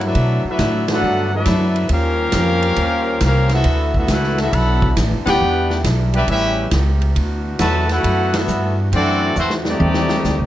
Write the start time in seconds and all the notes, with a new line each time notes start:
Already playing: G2 E3 F#3 A#3 G4
0.01 F#3 A3 E4, ride
0.06 D4 A4 B4 E5
0.14 B2 D3 A3 B3, kick, ride
0.44 F#3, muted upright bass stroke
0.48 A3 D4 E4 A4 B4 E5
0.59 A2, kick, snare, hi-hat pedal, ride
0.88 A3 D4 F#4 A4 B4 F#5, snare, ride
0.92 D4
1.02 G2
1.34 F#3 A3 D4 E4 A4 B4 E5
1.46 F#2, kick, snare, hi-hat pedal, ride
1.76 ride
1.89 D#2 G3 A#3 C#4 F4 G4 A#4 C5 F5, kick, ride
2.32 F2, kick, snare, hi-hat pedal, ride
2.62 ride
2.76 D#2, kick, ride
3.20 C2 A#3 C#4 F4 G4 A#4, kick, snare, hi-hat pedal, ride
3.25 F5
3.49 A3 B3 E4 E5, snare, ride
3.53 B3 F#4 A4
3.64 D2 E3 B3 D4 E4, kick, ride
3.94 A3 B3 E4 F#4 A4 E5, kick
4.08 C#2 A3 B3 E4 F#4 A4 B4 F#5, kick, snare, hi-hat pedal, ride
4.23 snare
4.38 A3 B3 E4 F#4 A4 E5, snare, ride
4.52 B1 B2 F#3 B3 A4 E5 F#5 B5, kick, ride
4.82 kick
4.96 A1, kick, snare, hi-hat pedal, ride
5.11 F#1
5.26 D1 B3 D4 G4 B4 F#5 G5, snare, ride
5.41 E2 G3 E4
5.70 snare
5.84 B1, kick, snare, hi-hat pedal, ride
6.13 G3 B3 D4 E4 G4 B4 E5, ride
6.27 A1 C#3 G3 A3 B3 C#4 E4 G4 B4 E5, kick, ride
6.71 C#2, kick, snare, hi-hat pedal, ride
7.02 ride
7.15 D2 E3 B3 D4 F#4, kick, ride
7.59 E2 B2 F#3 A3 F#4 B4 E5 A5, kick, snare, hi-hat pedal, ride
7.88 A3 B3 F#4 A4 B4 F#5, snare, ride
7.92 E4
8.04 F#2, kick, ride
8.34 A3 B3 E4 F#4 A4 E5, snare, ride
8.48 G2, hi-hat pedal
8.91 F#2 E3 A3 C4 D4 F#4 A4 D5, kick, ride
9.36 E2 E3 A3 C4 E4 F#4 C5, hi-hat pedal
9.50 snare
9.65 G3 A3 C4 D#4 G4 D5, snare
9.79 D#2 B2 D#3 G4, high tom
9.94 snare
10.09 snare
10.24 D2, snare, hi-hat pedal
10.39 B1